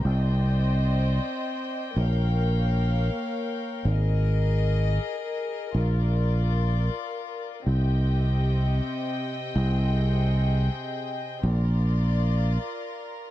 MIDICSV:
0, 0, Header, 1, 3, 480
1, 0, Start_track
1, 0, Tempo, 500000
1, 12775, End_track
2, 0, Start_track
2, 0, Title_t, "String section"
2, 0, Program_c, 0, 48
2, 63, Note_on_c, 0, 75, 72
2, 63, Note_on_c, 0, 79, 75
2, 73, Note_on_c, 0, 72, 65
2, 74, Note_on_c, 0, 60, 76
2, 77, Note_on_c, 0, 74, 65
2, 1871, Note_off_c, 0, 75, 0
2, 1876, Note_off_c, 0, 72, 0
2, 1877, Note_off_c, 0, 60, 0
2, 1878, Note_off_c, 0, 74, 0
2, 1883, Note_on_c, 0, 77, 67
2, 1886, Note_on_c, 0, 58, 83
2, 1886, Note_on_c, 0, 73, 68
2, 1888, Note_on_c, 0, 70, 74
2, 3671, Note_off_c, 0, 79, 0
2, 3684, Note_off_c, 0, 77, 0
2, 3685, Note_off_c, 0, 58, 0
2, 3685, Note_off_c, 0, 73, 0
2, 3702, Note_on_c, 0, 75, 94
2, 3705, Note_on_c, 0, 68, 78
2, 5506, Note_off_c, 0, 75, 0
2, 5507, Note_off_c, 0, 68, 0
2, 5523, Note_on_c, 0, 74, 91
2, 5524, Note_on_c, 0, 65, 74
2, 7326, Note_off_c, 0, 70, 0
2, 7344, Note_off_c, 0, 65, 0
2, 7344, Note_off_c, 0, 74, 0
2, 7354, Note_on_c, 0, 75, 68
2, 7356, Note_on_c, 0, 79, 80
2, 7362, Note_on_c, 0, 48, 80
2, 7364, Note_on_c, 0, 60, 72
2, 7364, Note_on_c, 0, 67, 63
2, 9156, Note_off_c, 0, 48, 0
2, 9167, Note_on_c, 0, 48, 85
2, 9169, Note_off_c, 0, 67, 0
2, 9180, Note_on_c, 0, 68, 65
2, 10960, Note_off_c, 0, 75, 0
2, 10961, Note_off_c, 0, 79, 0
2, 10965, Note_off_c, 0, 60, 0
2, 10973, Note_off_c, 0, 48, 0
2, 10974, Note_on_c, 0, 65, 72
2, 10979, Note_off_c, 0, 68, 0
2, 10983, Note_on_c, 0, 74, 90
2, 10985, Note_on_c, 0, 70, 69
2, 12775, Note_off_c, 0, 65, 0
2, 12775, Note_off_c, 0, 70, 0
2, 12775, Note_off_c, 0, 74, 0
2, 12775, End_track
3, 0, Start_track
3, 0, Title_t, "Fingered electric bass"
3, 0, Program_c, 1, 33
3, 47, Note_on_c, 1, 36, 103
3, 1135, Note_off_c, 1, 36, 0
3, 1885, Note_on_c, 1, 34, 108
3, 2963, Note_off_c, 1, 34, 0
3, 3696, Note_on_c, 1, 32, 105
3, 4778, Note_off_c, 1, 32, 0
3, 5515, Note_on_c, 1, 34, 101
3, 6606, Note_off_c, 1, 34, 0
3, 7357, Note_on_c, 1, 36, 90
3, 8444, Note_off_c, 1, 36, 0
3, 9174, Note_on_c, 1, 36, 108
3, 10253, Note_off_c, 1, 36, 0
3, 10976, Note_on_c, 1, 34, 104
3, 12064, Note_off_c, 1, 34, 0
3, 12775, End_track
0, 0, End_of_file